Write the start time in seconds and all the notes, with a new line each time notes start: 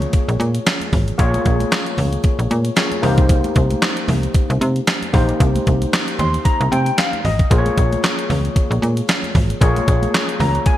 Already playing: A#3 F4 G#4 C#5
0.02 closed hi-hat
0.13 kick, closed hi-hat, muted conga
0.28 A#1, closed hi-hat
0.40 A#2, closed hi-hat, high conga
0.55 closed hi-hat
0.66 snare, clap, closed hi-hat, muted conga
0.81 closed hi-hat, high conga
0.93 G#1, kick, open hi-hat, muted conga, low conga
1.08 closed hi-hat
1.18 A#1 A#3 F4 G#4 C#5, kick, closed hi-hat, muted conga
1.34 closed hi-hat, high conga
1.45 A#1, kick, closed hi-hat, muted conga
1.60 closed hi-hat, high conga
1.72 snare, clap, closed hi-hat
1.86 closed hi-hat
1.98 C#2, open hi-hat, muted conga, high conga, low conga
2.13 closed hi-hat
2.24 kick, closed hi-hat, muted conga
2.39 A#1, closed hi-hat
2.51 A#2, closed hi-hat, high conga
2.65 closed hi-hat
2.77 A#3 F4 G#4 C#5, snare, clap, closed hi-hat
2.92 closed hi-hat, high conga
3.02 C2 A#3 D#4 G4 C5, open hi-hat, low conga
3.18 kick, closed hi-hat
3.29 kick, closed hi-hat
3.44 closed hi-hat, high conga
3.56 C2, kick, closed hi-hat, muted conga
3.71 closed hi-hat, high conga
3.82 snare, clap, closed hi-hat
3.97 closed hi-hat
4.08 C2, open hi-hat, high conga, low conga
4.23 closed hi-hat
4.34 kick, closed hi-hat, muted conga
4.50 C2, closed hi-hat
4.61 C3, closed hi-hat, muted conga, high conga
4.76 closed hi-hat
4.87 snare, clap, closed hi-hat, muted conga
5.02 closed hi-hat, high conga
5.13 A#1 A#3 D#4 G4 C5, kick, open hi-hat, muted conga, low conga
5.29 closed hi-hat
5.40 C2, kick, closed hi-hat, muted conga
5.56 closed hi-hat, high conga
5.67 C2, kick, closed hi-hat
5.82 closed hi-hat, high conga
5.93 snare, clap, closed hi-hat
6.08 closed hi-hat
6.19 D#2 C6, closed hi-hat, muted conga, high conga, low conga
6.34 closed hi-hat
6.45 A#5, kick, closed hi-hat
6.61 C2, closed hi-hat
6.72 C3 G5, closed hi-hat, muted conga, high conga
6.86 closed hi-hat
6.98 F5, snare, clap, closed hi-hat, muted conga
7.13 closed hi-hat, high conga
7.25 G#1 D#5, open hi-hat, muted conga, low conga
7.39 kick, closed hi-hat
7.50 A#1 A#3 F4 G#4 C5, kick, closed hi-hat, muted conga
7.58 C#5
7.66 closed hi-hat, high conga
7.77 A#1, kick, closed hi-hat, muted conga
7.92 closed hi-hat, high conga
8.04 snare, clap, closed hi-hat, muted conga
8.19 closed hi-hat
8.30 C#2, open hi-hat, high conga, low conga
8.45 closed hi-hat
8.56 kick, closed hi-hat, muted conga
8.71 A#1, closed hi-hat
8.82 A#2, closed hi-hat, high conga
8.97 closed hi-hat
9.09 snare, clap, closed hi-hat
9.23 closed hi-hat, high conga
9.35 G#1, kick, open hi-hat, muted conga, low conga
9.50 closed hi-hat
9.61 A#1 A#3 F4 G#4 C#5, kick, closed hi-hat, muted conga
9.76 closed hi-hat, high conga
9.88 A#1, kick, closed hi-hat, muted conga
10.02 closed hi-hat, high conga
10.15 snare, clap, closed hi-hat
10.29 closed hi-hat
10.40 C#2 A#5, open hi-hat, muted conga, high conga, low conga
10.55 closed hi-hat
10.66 G#5, kick, closed hi-hat